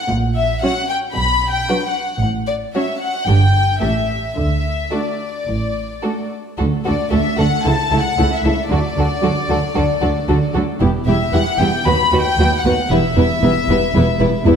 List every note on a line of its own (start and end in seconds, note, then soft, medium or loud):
0.09 0.51 A#1 medium
0.09 0.52 A#2 medium
0.35 0.60 E5 medium
0.62 0.71 F#3 soft
0.62 0.71 C#4 soft
0.62 0.72 F#4 soft
0.62 0.71 C#5 soft
0.62 0.88 F#5 medium
0.89 0.97 G5 medium
1.14 1.57 B1 medium
1.14 1.57 B2 medium
1.14 1.50 B5 medium
1.51 1.85 G5 medium
1.68 1.77 F#3 soft
1.68 1.77 D4 soft
1.68 1.77 F#4 soft
1.68 1.76 B4 soft
1.86 2.21 F#5 medium
2.21 2.63 A1 medium
2.21 2.63 A2 medium
2.47 2.55 D5 medium
2.75 2.83 F#3 soft
2.75 2.83 C#4 soft
2.75 2.83 F#4 soft
2.75 2.83 C#5 soft
2.75 3.00 E5 medium
3.00 3.26 F#5 medium
3.27 3.70 G1 medium
3.27 3.70 G2 soft
3.27 3.35 D3 soft
3.27 3.35 D4 soft
3.27 3.36 G4 soft
3.27 3.36 B4 soft
3.27 3.81 G5 medium
3.80 4.24 A1 soft
3.80 4.24 A2 soft
3.80 3.90 A3 soft
3.80 3.90 C#4 soft
3.80 3.89 G4 soft
3.80 3.89 A4 soft
3.80 4.35 E5 medium
4.36 4.80 D2 soft
4.36 4.80 D3 soft
4.36 4.91 E5 medium
4.91 5.00 A3 soft
4.91 5.00 D4 soft
4.91 5.00 F#4 soft
4.91 4.99 A4 soft
4.91 6.32 D5 soft
5.48 5.92 A1 soft
5.48 5.92 A2 soft
6.03 6.12 A3 soft
6.03 6.12 D4 soft
6.03 6.11 F#4 soft
6.03 6.11 A4 soft
6.57 6.68 D2 soft
6.57 6.68 D3 soft
6.57 6.67 A3 soft
6.57 6.67 D4 soft
6.57 6.65 F#4 soft
6.57 6.65 A4 soft
6.85 6.95 D2 soft
6.85 6.94 D3 soft
6.85 6.95 A3 soft
6.85 6.95 D4 soft
6.85 6.93 F#4 soft
6.85 6.93 A4 soft
6.85 7.10 D5 soft
7.11 7.21 D2 soft
7.11 7.20 D3 soft
7.11 7.19 A3 soft
7.11 7.20 D4 soft
7.11 7.19 F#4 soft
7.11 7.19 A4 soft
7.11 7.38 E5 medium
7.37 7.46 D2 soft
7.37 7.46 D3 soft
7.37 7.47 A3 soft
7.37 7.47 D4 soft
7.37 7.45 F#4 soft
7.37 7.46 A4 soft
7.37 7.65 F#5 medium
7.65 7.73 C#2 soft
7.65 7.74 C#3 soft
7.65 7.73 A3 soft
7.65 7.73 E4 soft
7.65 7.73 A4 soft
7.65 8.00 A5 medium
7.91 7.99 C#2 soft
7.91 8.00 C#3 soft
7.91 8.00 A3 soft
7.91 7.99 E4 soft
7.91 8.00 E4 soft
7.91 7.99 A4 soft
7.99 8.35 F#5 medium
8.18 8.26 C#2 soft
8.18 8.26 C#3 soft
8.18 8.26 A3 soft
8.18 8.26 E4 soft
8.18 8.26 A4 soft
8.34 8.70 E5 soft
8.44 8.52 C#2 soft
8.44 8.52 C#3 soft
8.44 8.52 A3 soft
8.44 8.52 E4 soft
8.44 8.53 E4 soft
8.44 8.53 A4 soft
8.69 8.79 D2 soft
8.69 8.78 D3 soft
8.69 8.78 F#3 soft
8.69 8.77 D4 soft
8.69 8.79 F#4 soft
8.69 8.79 A4 soft
8.69 10.51 D5 medium
8.96 9.04 D2 soft
8.96 9.05 D3 soft
8.96 9.04 F#3 soft
8.96 9.04 D4 soft
8.96 9.07 F#4 soft
8.96 9.07 A4 soft
9.21 9.31 D2 soft
9.21 9.31 D3 soft
9.21 9.29 F#3 soft
9.21 9.30 D4 soft
9.21 9.31 F#4 soft
9.21 9.31 A4 soft
9.49 9.57 D2 soft
9.49 9.58 D3 soft
9.49 9.57 F#3 soft
9.49 9.57 D4 soft
9.49 9.57 F#4 soft
9.49 9.57 A4 soft
9.74 9.84 D2 soft
9.74 9.84 D3 soft
9.74 9.82 F#3 soft
9.74 9.82 D4 soft
9.74 9.83 F#4 soft
9.74 9.83 A4 soft
10.01 10.10 D2 soft
10.01 10.10 D3 soft
10.01 10.09 F#3 soft
10.01 10.09 D4 soft
10.01 10.09 F#4 soft
10.01 10.09 A4 soft
10.28 10.37 D2 soft
10.28 10.37 D3 medium
10.28 10.36 F#3 soft
10.28 10.36 D4 soft
10.28 10.36 F#4 soft
10.28 10.36 A4 soft
10.54 10.62 D2 soft
10.54 10.63 D3 soft
10.54 10.63 F#3 soft
10.54 10.63 D4 soft
10.54 10.62 F#4 soft
10.54 10.63 A4 soft
10.80 10.89 E1 soft
10.80 10.90 E2 medium
10.80 10.89 G3 soft
10.80 10.89 B3 soft
10.80 10.88 E4 soft
10.80 10.88 G4 soft
11.07 11.15 E1 soft
11.07 11.15 E2 soft
11.07 11.16 G3 soft
11.07 11.15 B3 soft
11.07 11.16 E4 soft
11.07 11.15 G4 soft
11.07 11.32 E5 medium
11.33 11.41 E1 soft
11.33 11.42 E2 soft
11.33 11.41 G3 soft
11.33 11.41 B3 soft
11.33 11.42 E4 soft
11.33 11.42 G4 soft
11.33 11.60 F#5 medium
11.59 11.68 E1 soft
11.59 11.68 E2 soft
11.59 11.68 G3 soft
11.59 11.68 B3 soft
11.59 11.68 E4 soft
11.59 11.68 G4 soft
11.59 11.86 G5 medium
11.85 11.93 D#2 medium
11.85 11.94 D#2 medium
11.85 11.94 F#3 soft
11.85 11.94 B3 soft
11.85 11.94 F#4 soft
11.85 11.94 B4 soft
11.85 12.21 B5 medium
12.12 12.20 D#2 soft
12.12 12.21 D#2 soft
12.12 12.21 F#3 soft
12.12 12.21 B3 soft
12.12 12.21 F#4 soft
12.12 12.20 B4 soft
12.19 12.55 G5 medium
12.38 12.46 D#2 soft
12.38 12.47 D#2 medium
12.38 12.47 F#3 soft
12.38 12.47 B3 soft
12.38 12.48 F#4 soft
12.38 12.48 B4 soft
12.57 12.91 F#5 medium
12.65 12.73 D#2 medium
12.65 12.73 D#2 soft
12.65 12.73 F#3 soft
12.65 12.73 B3 soft
12.65 12.73 F#4 soft
12.65 12.73 B4 soft
12.90 12.99 E1 medium
12.90 12.99 E2 medium
12.90 12.98 G3 soft
12.90 12.98 B3 soft
12.90 12.99 E4 soft
12.90 12.99 B4 medium
12.90 14.56 E5 medium
13.16 13.24 E1 medium
13.16 13.25 E2 soft
13.16 13.24 G3 soft
13.16 13.25 B3 soft
13.16 13.25 E4 soft
13.16 13.24 B4 soft
13.42 13.50 E1 soft
13.42 13.51 E2 soft
13.42 13.51 G3 soft
13.42 13.50 B3 soft
13.42 13.51 E4 soft
13.42 13.51 B4 soft
13.68 13.76 E1 soft
13.68 13.77 E2 medium
13.68 13.77 G3 soft
13.68 13.77 B3 soft
13.68 13.77 E4 soft
13.68 13.78 B4 soft
13.95 14.03 E1 medium
13.95 14.03 E2 medium
13.95 14.03 G3 soft
13.95 14.03 B3 soft
13.95 14.03 E4 medium
13.95 14.04 B4 medium
14.20 14.28 E1 medium
14.20 14.28 E2 medium
14.20 14.28 G3 soft
14.20 14.28 B3 soft
14.20 14.28 E4 medium
14.20 14.28 B4 medium
14.46 14.55 E1 medium
14.46 14.54 E2 medium
14.46 14.55 G3 medium
14.46 14.54 B3 soft
14.46 14.54 E4 medium
14.46 14.54 B4 medium